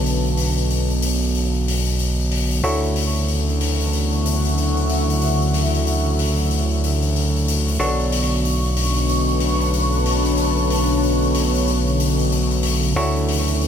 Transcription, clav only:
Already playing: D4 F#4 A4 C#5
2.64 E4 F#4 A4 C#5
7.80 D4 F#4 A4 C#5
12.96 E4 F#4 A4 C#5

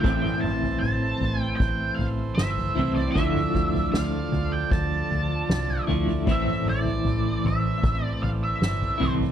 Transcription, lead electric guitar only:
0.00 G5
0.41 A5
0.80 A5
1.40 G5
1.56 G5
1.95 F5
2.35 E5
2.95 D5
3.12 E5
3.92 F5
4.52 G5
4.72 A5
6.32 E5
6.69 D5
7.47 E5
8.04 D5
8.23 F5
8.44 E5
9.02 C5

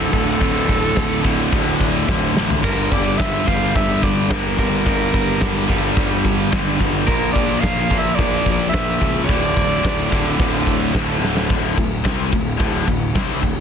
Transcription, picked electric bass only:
Already playing: D1
0.12 D1
0.40 D1
0.69 D1
0.97 D1
1.25 D1
1.53 D1
2.08 D1
2.34 A1
2.64 G1
2.92 G1
3.19 G1
3.48 G1
3.76 G1
4.30 G1
4.58 G1
4.86 G1
5.14 G1
5.41 G1
5.69 G1
5.97 G1
6.52 G1
6.80 G1
7.08 A#1
7.35 A#1
7.63 A#1
7.90 A#1
8.19 A#1
8.73 A#1
9.01 C#2
9.29 D1
9.57 D1
9.84 D1
10.12 D1
10.39 D1
10.95 D1
11.19 D1
11.50 D1
11.77 D1
12.05 C2
12.32 D1
12.60 D1
12.87 D1
13.15 C2
13.43 D1

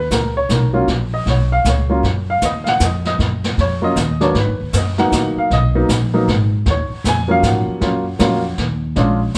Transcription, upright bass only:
0.11 C#2
0.49 B1
0.88 A#1
1.26 B1
1.65 C#2
2.03 F#2
2.42 D#2
2.80 F2
3.19 F#2
3.58 F2
3.96 D#2
4.35 G#2
4.48 F#2
4.61 D#2
4.73 F#2
5.12 D#2
5.36 muted upright bass stroke
5.50 B1
5.89 A#1
6.28 G#1
6.66 D#2
6.91 muted upright bass stroke
7.04 F2
7.43 G#2
7.67 muted upright bass stroke
7.81 F#2
8.19 F2
8.58 D#2
8.96 A#1
9.35 B1

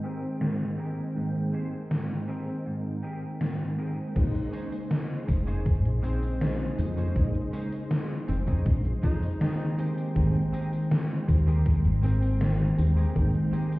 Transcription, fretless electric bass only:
4.16 A#1
5.28 F1
5.85 A#1
6.78 F2
7.16 A#1
8.28 F1
8.66 A#1
9.03 F2
10.16 G#1
11.28 D#2
11.85 G#1
12.78 D#2
13.16 G#1

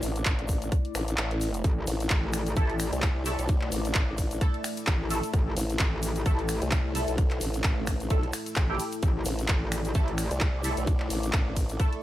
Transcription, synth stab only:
2.57 A3 E4 A4
3.26 A3 E4 A4
4.41 A3 E4 A4
5.10 A3 E4 A4
6.26 A3 E4 A4
6.95 A3 E4 A4
8.10 A3 E4 A4
8.70 A3 E4 G4
9.95 A3 E4 A4
10.64 A3 E4 A4
11.80 A3 E4 A4

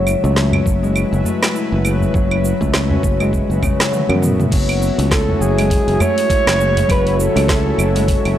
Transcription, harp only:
Already playing: C#3 F#3 G#3 A3 C#4 E4
0.24 A3
0.53 C#4
0.83 G#3
1.25 A3
1.54 E4
1.84 C#3
2.14 F#3
2.61 A3
2.90 C#4
3.20 G#3
3.63 C#3
3.79 F#3
3.92 A3
4.09 B3
4.22 B3
4.52 F#3
4.98 A3
5.28 C#4
5.58 G#3
6.00 A3
6.30 E4
6.59 C#3
6.89 F#3
7.36 A3
7.66 C#4
7.95 G#3

